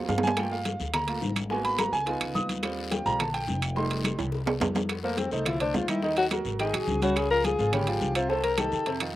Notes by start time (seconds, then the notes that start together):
0.09 G2 F5, high bongo, low bongo, high conga, low timbale, short guiro
0.18 low timbale
0.23 G#5, high conga, short guiro
0.27 low timbale
0.37 A3 A#3 F4 G5, high bongo, high conga, high timbale, long guiro, claves
0.51 F5, high bongo, high conga
0.65 high bongo, high conga, high timbale, short guiro
0.79 D2, high bongo, high conga, short guiro
0.94 A#5, high bongo, high conga, low conga, high timbale, long guiro, claves
1.07 A3 A#3 F4, high bongo, high conga, high timbale
1.22 G#1, high bongo, low bongo, high conga, short guiro
1.36 high conga, high timbale, short guiro, claves
1.50 A#3 B3 F#4 G#5, high bongo, high conga, long guiro
1.64 B5, high bongo, high conga, high timbale
1.78 A#5, high bongo, high conga, high timbale, short guiro, claves
1.92 C#2 G#5, high bongo, short guiro
2.06 B3 D#4 F4, high bongo, high conga, high timbale, long guiro
2.21 C#2, high bongo, high conga, high timbale, claves
2.35 D#2 D#6, high bongo, low bongo, high conga, short guiro
2.49 high conga, high timbale, short guiro
2.63 G3 C4 F4, high bongo, high conga, high timbale, long guiro, claves
2.77 high bongo, high conga
2.91 G5, high bongo, high conga, high timbale, short guiro
3.05 A#1 G3 C4 F4 A#5, high bongo, high conga, short guiro
3.19 A5, high bongo, high conga, low conga, high timbale, long guiro, claves
3.34 G5, high bongo, high conga, high timbale
3.48 F1, high bongo, low bongo, high conga, short guiro
3.62 high timbale, short guiro, claves
3.76 G3 A3 D#4 C6, high bongo, high conga, long guiro
3.90 high bongo, high conga, high timbale
4.04 high bongo, high conga, high timbale, short guiro, claves
4.18 C2, high bongo, high timbale, short guiro
4.32 high bongo, high conga, long guiro
4.46 high bongo, high conga, low timbale, claves
4.60 F2, low bongo, high conga, low timbale, short guiro
4.75 low bongo, high conga, low timbale, short guiro
4.89 high bongo, high conga, high timbale, long guiro, claves
5.03 A3 A#3 A4 C5, high bongo, high conga
5.17 C4, high bongo, high conga, high timbale, short guiro
5.31 C2 A3 D#4 A4 C5, high conga, short guiro
5.45 F3 E4 F4 F5, high bongo, high conga, low conga, high timbale, long guiro, claves
5.60 A3 D4 A4 C5, high bongo, high conga, high timbale
5.74 D#2 F4, high bongo, low bongo, high conga, low timbale, short guiro
5.88 D#3 D#4 E4 D#5, high conga, high timbale, short guiro, claves
6.02 D#3 D#4 D#5, high bongo, high conga, long guiro
6.17 F#4, high bongo, high conga, high timbale
6.31 F#3 F#4 A#4, high bongo, high conga, high timbale, short guiro, claves
6.45 G#1, high bongo, short guiro
6.59 D#3 D#4 G#4 D#5, high bongo, high conga, high timbale, long guiro
6.73 A#1 F#3 F#4 G#4, high bongo, high conga, high timbale, claves
6.87 C#2, high bongo, low bongo, high conga, short guiro
7.02 C#3 C#4 F#4 C#5, high conga, high timbale, short guiro
7.16 G#4, high bongo, high timbale, long guiro, claves
7.30 F3 F4 G#4 A#4, high bongo, high conga
7.44 G#4, high bongo, high conga, high timbale, short guiro
7.58 G#1 F3 F4 G#4, high bongo, high conga, short guiro
7.73 C#3 C#4 G4 C#5, high bongo, high conga, low conga, high timbale, long guiro, claves
7.87 F3 F4 G#4, high bongo, high conga, high timbale
8.01 C2, high bongo, low bongo, high conga, short guiro
8.15 C3 C4 F4 C5, high timbale, short guiro, claves
8.29 C3 C4 A4 C5, high bongo, high conga, long guiro
8.44 A#4, high bongo, high conga, high timbale
8.58 D#3 D#4 G4 A4, high bongo, high conga, high timbale, short guiro, claves
8.72 F2, high bongo, short guiro
8.86 C3 C4 C5, high bongo, high conga, high timbale, long guiro
9.00 D#3 D#4 F4, high bongo, high conga, high timbale, claves